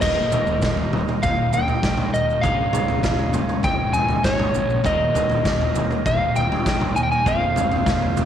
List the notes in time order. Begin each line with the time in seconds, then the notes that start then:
0.00 D#1 D#2 A#2 D#3 G3 A#3 D#4 G4 A#4 D#5, kick, floor tom, crash, maracas
0.32 floor tom, mid tom, maracas
0.47 floor tom, maracas
0.62 kick, snare, floor tom, maracas
0.77 floor tom
0.93 floor tom, mid tom
1.08 mid tom, maracas
1.23 D#1 F5, kick, floor tom, maracas
1.53 G5, floor tom, maracas
1.68 floor tom, maracas
1.83 A#1, kick, snare, maracas
1.97 floor tom, mid tom
2.14 D#1 D#5, maracas
2.30 maracas
2.41 C#1 C#2 G#2 C#3 G#3 C#4 D#4 G#4 C#5 D#5 F5, kick, floor tom, maracas
2.73 floor tom, mid tom, maracas
2.88 floor tom, maracas
3.03 kick, snare, floor tom, maracas
3.19 floor tom
3.33 floor tom, mid tom, maracas
3.49 mid tom, maracas
3.63 C#1 G5, kick, floor tom, maracas
3.93 G#5, floor tom, maracas
4.08 floor tom, maracas
4.24 G#1 C#5, kick, snare, maracas
4.39 floor tom, mid tom
4.54 A#1, maracas
4.70 maracas
4.83 D#1 D#2 A#2 D#3 G3 A#3 D#4 G4 A#4 D#5, kick, floor tom, maracas
5.15 floor tom, mid tom, maracas
5.30 floor tom, maracas
5.45 kick, snare, floor tom, maracas
5.61 floor tom
5.75 floor tom, mid tom, maracas
5.91 mid tom, maracas
6.06 D#1 F5, kick, floor tom, maracas
6.36 G5, floor tom, maracas
6.52 floor tom
6.66 A#1, kick, snare, maracas
6.81 floor tom, mid tom
6.96 D#2 G#5, maracas
7.03 G5
7.12 G#5, maracas
7.24 F1 F2 C3 F3 G#3 C4 F4 G#4 C5 F5, kick, floor tom, maracas
7.56 floor tom, mid tom, maracas
7.72 floor tom, maracas
7.86 kick, snare, floor tom, maracas
8.02 floor tom
8.17 floor tom, mid tom, maracas